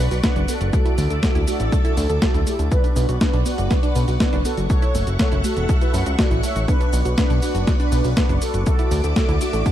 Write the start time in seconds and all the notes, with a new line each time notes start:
Already playing: D4 B4 D5 F#5 C#6
0.11 B1 F#4, open hi-hat, cabasa
0.23 B3 D4 B4, kick, snare, closed hi-hat, cabasa
0.36 F#1 D4, closed hi-hat, cabasa
0.48 B3 F#4 A4, open hi-hat, cabasa
0.61 F#1 F#4, closed hi-hat, cabasa
0.73 A3 F#4 A4 E5 D6, kick, closed hi-hat, cabasa
0.86 E4, closed hi-hat, cabasa
0.98 D2 A3, open hi-hat, cabasa
1.10 D2 A4, closed hi-hat, cabasa
1.23 A3 F#4 A4, kick, snare, closed hi-hat, cabasa
1.35 D2 E4, closed hi-hat, cabasa
1.47 A3 D4 F#4, open hi-hat, cabasa
1.60 A1 A4, closed hi-hat, cabasa
1.72 A3, kick, closed hi-hat, cabasa
1.84 E4 F#4 A4, closed hi-hat, cabasa
1.97 D2 A3, open hi-hat, cabasa
2.10 D2 A4, closed hi-hat, cabasa
2.22 A3 F#4 A4, kick, snare, closed hi-hat, cabasa
2.34 D2 E4, closed hi-hat, cabasa
2.46 A3 E4 G4, open hi-hat, cabasa
2.59 D2 A4, closed hi-hat, cabasa
2.71 B3 D4 B4 D5 F#5 C#6, kick, closed hi-hat, cabasa
2.84 D4, closed hi-hat, cabasa
2.96 B1 B3, open hi-hat, cabasa
3.09 B1 F#4, closed hi-hat, cabasa
3.21 B3 D4 B4, kick, snare, closed hi-hat, cabasa
3.33 B1 D4, closed hi-hat, cabasa
3.46 B3 D4 F#4, open hi-hat, cabasa
3.58 F#1 F#4, closed hi-hat, cabasa
3.71 B3, kick, snare, closed hi-hat, cabasa
3.83 D4 B4, closed hi-hat, cabasa
3.96 B1 B3, open hi-hat, cabasa
4.08 B1 F#4, open hi-hat, cabasa
4.20 B3 D4 B4, kick, snare, closed hi-hat, cabasa
4.33 F#1 D4, closed hi-hat, cabasa
4.45 B3 F#4 A4, open hi-hat, cabasa
4.57 F#1 F#4, closed hi-hat, cabasa
4.70 A3 A4 C#5 E5, kick, closed hi-hat, cabasa
4.82 E4, closed hi-hat, cabasa
4.95 F#1 A3, open hi-hat, cabasa
5.07 F#1 F#4, closed hi-hat, cabasa
5.19 A3 A4 C#5, kick, snare, closed hi-hat, cabasa
5.32 F#1 E4, closed hi-hat, cabasa
5.44 A3 F#4 A4, open hi-hat, cabasa
5.57 E1 F#4, closed hi-hat, cabasa
5.69 A3, kick, closed hi-hat, cabasa
5.81 E4 F#4 B4, closed hi-hat, cabasa
5.94 F#2 A3, open hi-hat, cabasa
6.06 C#2 F#4, closed hi-hat, cabasa
6.19 A3 F#4 D5, kick, snare, closed hi-hat, cabasa
6.31 A1 E4, closed hi-hat, cabasa
6.43 A3 C#5 E5, open hi-hat, cabasa
6.56 A1 F#4, closed hi-hat, cabasa
6.68 B3 D4 B4 D5, kick, closed hi-hat, cabasa
6.80 D4, closed hi-hat, cabasa
6.93 B1 B3, open hi-hat, cabasa
7.05 B1 F#4, closed hi-hat, cabasa
7.18 B3 D4 B4, kick, snare, closed hi-hat, cabasa
7.30 B1 D4, closed hi-hat, cabasa
7.42 B3 D4 F#4, open hi-hat, cabasa
7.55 F#1 F#4, closed hi-hat, cabasa
7.67 B3, kick, snare, closed hi-hat, cabasa
7.80 D4 B4, closed hi-hat, cabasa
7.92 B1 B3, open hi-hat, cabasa
8.04 B1 F#4, open hi-hat, cabasa
8.17 B3 D4 B4, kick, snare, closed hi-hat, cabasa
8.29 F#1 D4, closed hi-hat, cabasa
8.42 B3 F#4 A4, open hi-hat, cabasa
8.54 F#1 F#4, closed hi-hat, cabasa
8.66 A3 F#4 A4 D5 E5 D6, kick, closed hi-hat, cabasa
8.79 E4, closed hi-hat, cabasa
8.91 D2 A3, open hi-hat, cabasa
9.04 D2 A4, closed hi-hat, cabasa
9.16 A3 F#4 A4, kick, snare, closed hi-hat, cabasa
9.29 D2 E4, closed hi-hat, cabasa
9.41 A3 D4 F#4, open hi-hat, cabasa
9.53 A1 A4, closed hi-hat, cabasa
9.66 A3, kick, closed hi-hat, cabasa